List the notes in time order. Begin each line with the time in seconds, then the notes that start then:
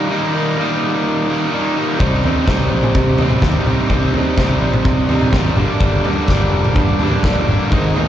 Already playing: A#3 D#4
0.09 D#3 G3 A#3 D#4
0.33 G3 A#3 D#4
0.58 D#3 G3 A#3 D#4
1.28 G3 A#3 D#4
1.52 D#3 G3 A#3 D#4
1.75 G3 A#3 D#4
1.98 C2 C3 G3 C4 D#4, kick, floor tom
2.22 G3 C4 D#4, floor tom
2.46 C2 C3 G3 C4 D#4, kick, snare, floor tom
2.72 A#1
2.83 mid tom
2.95 C3, kick, floor tom
3.18 G3 C4 D#4, floor tom
3.30 mid tom
3.42 D#2 C3 G3 C4 D#4, kick, snare, mid tom
3.53 floor tom
3.66 C2 G3 C4 D#4, mid tom
3.88 C2 C3 G3 C4 D#4, kick, floor tom
4.13 G3 C4 D#4, floor tom
4.37 C2 C3 G3 C4 D#4, kick, snare, floor tom
4.61 A#1
4.73 mid tom
4.85 C3, kick, floor tom
5.09 G3 C4 D#4, floor tom
5.21 mid tom
5.32 G#1 C3 G3 C4 D#4, kick, snare, mid tom
5.45 floor tom
5.56 G1 G2 D3 G3 A#3 D4, mid tom
5.79 G1 G2 D3 G3 A#3 D4, kick, floor tom
6.03 G3 A#3 D4, floor tom
6.27 G1 D3 G3 A#3 D4, kick, snare, floor tom
6.52 F1
6.64 mid tom
6.75 G2, kick, floor tom
6.98 G3 A#3 D4, floor tom
7.12 mid tom
7.23 A#1 G2 D3 G3 A#3 D4, kick, snare, mid tom
7.35 floor tom
7.47 G1 G3 A#3 D4, mid tom
7.71 G#1 G#2 D#3 G#3 C4 D#4, kick, floor tom
7.94 G#3 C4 D#4, floor tom